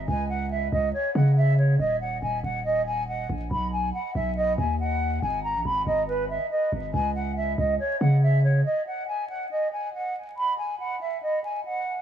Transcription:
0.08 C#2 G#5
0.29 F#5
0.51 E5
0.72 C#2 D#5
0.94 C#5
1.15 C#3 F#5
1.37 E5
1.58 C#5
1.79 D#1 D#5
2.01 F#5
2.22 D#1 G#5
2.44 D#1 F#5
2.65 D#5
2.87 G#5
3.08 F#5
3.29 A#1
3.51 B1 B5
3.72 G#5
3.94 F#5
4.15 B1 E5
4.37 D#5
4.58 D#2 G#5
4.80 F#5
5.22 G#1 G#5
5.44 A#5
5.55 A#1
5.65 G#1 B5
5.87 G#1 D#5
6.08 B4
6.30 E5
6.51 D#5
6.72 G#1
6.94 C#2 G#5
7.15 F#5
7.37 E5
7.58 C#2 D#5
7.80 C#5
8.01 C#3 F#5
8.22 E5
8.44 C#5
8.65 D#5
8.87 F#5
9.08 G#5
9.30 F#5
9.51 D#5
9.72 G#5
9.94 F#5
10.37 B5
10.58 G#5
10.80 F#5
11.01 E5
11.22 D#5
11.44 G#5
11.65 F#5

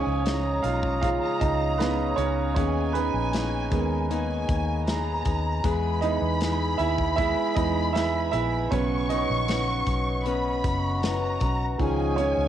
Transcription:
Already playing: F3 G#3 C#4 D#4 G#4 C#5 F5 G#5 D#6
0.07 C#2
0.25 G#3 C#4 D#4 G#4 A#5, snare, closed hi-hat
0.63 B1 G#3 C#4 D#4 F4 G#4 F5, closed hi-hat
0.83 kick
1.01 C#3 F3 G#3 C#4 D#4 F4 G#4 F5, kick, closed hi-hat
1.40 C#2 D#4 D#5, kick, closed hi-hat
1.78 G#3 B3 C#4 D#4 G#4 B4, snare, closed hi-hat
2.16 C#2 G#3 C#4 D#4 G#4 C#5, closed hi-hat
2.55 D#2 D#3 A#3 B3 C#4 D#4 G#4 C#5 G#5 A#5, kick, closed hi-hat
2.93 B3 D#4 G#4 B4, closed hi-hat
3.14 A#1
3.33 A#3 B3 D#4 G#4, snare, closed hi-hat
3.70 D#2 G#3 B3 D#4 G#4 A#4, kick, closed hi-hat
4.10 D#3 A#3 B3 D#4 G#4 G#5, closed hi-hat
4.49 D#2, kick, closed hi-hat
4.87 A#3 B3 D#4 G#4 A#5, snare, closed hi-hat
5.25 D#2 B3 D#4 G#4, kick, closed hi-hat
5.64 E2 E3 G#3 B3 E4 G#4 B4 B5, kick, closed hi-hat
6.01 G#3 B3 D#4 E4 G#4 D#5, closed hi-hat
6.22 E2
6.41 G#3 B3 E4 G#4, snare, closed hi-hat
6.77 D#2 E4 G#4 E5, closed hi-hat
6.82 B3
6.98 kick
7.16 E3 G#3 B3 E4 G#4 E5, kick, closed hi-hat
7.55 E2 E3 G#3 B3 D#4 D#5, kick, closed hi-hat
7.93 G#3 B3 E4 E5, snare, closed hi-hat
7.97 G#4
8.31 A#1 B3 E4 G#4 E5, closed hi-hat
8.71 B1 C#3 F#3 B3 C#4 F#4 B4 C#5 F#5 C#6, kick, closed hi-hat
9.09 C#4 D#4 F#4 B4 D#5, closed hi-hat
9.30 A#1
9.48 B3 C#4 F#4 B4, snare, closed hi-hat
9.87 B1, kick, closed hi-hat
10.25 B3 C#4 F#4 B4 B5, closed hi-hat
10.64 F#1, kick, closed hi-hat
11.02 B3 C#4 F#4 B4 A#5, snare, closed hi-hat
11.40 B1 C#4 F#4 B4, kick, closed hi-hat
11.78 C#2 C#3 D#3 F3 G#3 C#4 D#4 G#4 C#5 F5 G#5 D#6, kick, closed hi-hat
12.16 G#3 C#4 D#4 G#4 C#5, closed hi-hat
12.37 C#2

